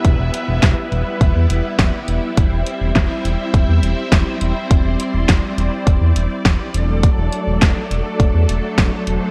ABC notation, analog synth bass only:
X:1
M:4/4
L:1/16
Q:1/4=103
K:Clyd
V:1 name="Analog synth bass" clef=bass
E,,, E,,, z E,,, E,,, z E,,, z E,,, E,, E,,, z E,,, z E,,, z | E,,, E,,, z E,,, E,,, z E,,, z E,,, E,, E,,, z E,,, z E,,, z | E,,, E,,, z E,,, E,,, z E,,, z E,,, E,, E,,, z E,,, z E,,,2- | E,,, E,,, z E,,, E,,, z E,,, z E,,, E,, E,,, z E,,, z E,,, z |]